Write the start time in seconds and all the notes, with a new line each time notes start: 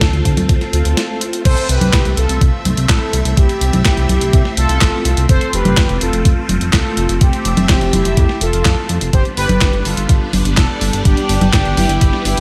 Already playing: A3 C4 F4 A4
0.01 D2, kick, snare, closed hi-hat
0.13 D2, closed hi-hat
0.25 D2, kick, closed hi-hat
0.37 D2, closed hi-hat, high conga
0.49 D2, kick, closed hi-hat
0.61 snare, closed hi-hat
0.73 D2 F4 A4, closed hi-hat
0.85 D2, closed hi-hat
0.97 snare, closed hi-hat
1.21 closed hi-hat
1.33 closed hi-hat
1.45 C2 A3 C4 A4 C5 E5, kick, closed hi-hat, crash
1.57 closed hi-hat
1.69 C2 G4 B4, closed hi-hat
1.81 C2, closed hi-hat, high conga
1.93 C2, kick, snare, clap, closed hi-hat
2.05 C2, closed hi-hat
2.17 C2 F4 A4, closed hi-hat
2.29 C2, closed hi-hat
2.41 C2, kick, closed hi-hat
2.65 C2, closed hi-hat, high conga
2.77 C2, closed hi-hat
2.89 A1 E4 A4, kick, snare, clap, closed hi-hat
3.13 C2, closed hi-hat
3.25 C2, closed hi-hat
3.37 C2 E4 G4, kick, closed hi-hat
3.49 closed hi-hat
3.61 C2, closed hi-hat
3.73 C2, closed hi-hat, high conga
3.85 C2 E4 G4, kick, snare, clap, closed hi-hat
3.97 C2, closed hi-hat
4.09 C2 E4 G4, closed hi-hat, high conga
4.21 C2, closed hi-hat
4.33 C2, kick, closed hi-hat
4.45 snare
4.57 C2 F4 A4, closed hi-hat
4.69 C2, closed hi-hat
4.81 A1, kick, snare, clap, closed hi-hat
5.05 C2, closed hi-hat
5.17 C2, closed hi-hat
5.29 F1 A3 F4 A4 C5, kick, closed hi-hat
5.41 closed hi-hat
5.53 F1 G4 B4, closed hi-hat
5.65 F1, closed hi-hat, high conga
5.77 F1, kick, snare, clap, closed hi-hat
5.89 F1, closed hi-hat
6.01 F1 F4 A4, closed hi-hat
6.13 F1, closed hi-hat
6.25 F1, kick, closed hi-hat
6.49 F1, closed hi-hat, high conga
6.61 F1, closed hi-hat
6.73 C2 F4 A4, kick, snare, clap, closed hi-hat
6.97 F1, closed hi-hat
7.09 F1, closed hi-hat
7.21 F1 C4 G4 E5, kick, closed hi-hat
7.33 closed hi-hat
7.45 F1, closed hi-hat
7.57 F1, closed hi-hat, high conga
7.69 F1 C4 G4, kick, snare, clap, closed hi-hat
7.81 F1, closed hi-hat
7.93 F1 E4 G4, closed hi-hat, high conga
8.05 F1, closed hi-hat
8.17 F2, kick, closed hi-hat
8.29 snare
8.41 F1 F4 A4, closed hi-hat
8.53 F1, closed hi-hat
8.65 F2, kick, snare, clap, closed hi-hat
8.89 F2, closed hi-hat
9.01 F1, closed hi-hat
9.13 G1 G3 B3 D4 G4 C5, kick, closed hi-hat
9.25 closed hi-hat
9.37 G1 G4 B4, open hi-hat
9.49 G1, closed hi-hat, high conga
9.61 G1, kick, snare, clap, closed hi-hat
9.73 G1, closed hi-hat
9.85 G1 F4 A4, open hi-hat
9.97 G1, closed hi-hat
10.09 G1, kick, closed hi-hat
10.33 G1, open hi-hat, high conga
10.45 G1, closed hi-hat
10.57 F1 D4 A4, kick, snare, clap, closed hi-hat
10.81 G1, open hi-hat
10.93 G1, closed hi-hat
11.05 G1 D4 G4, kick, closed hi-hat
11.17 closed hi-hat
11.29 G1, open hi-hat
11.41 G1, closed hi-hat, high conga
11.53 G1 D4 G4, kick, snare, clap, closed hi-hat
11.65 G1, closed hi-hat
11.77 G1 E4 G4, open hi-hat, high conga
11.89 G1, closed hi-hat
12.01 G1, kick, closed hi-hat
12.13 snare
12.25 G1 E4 G4, open hi-hat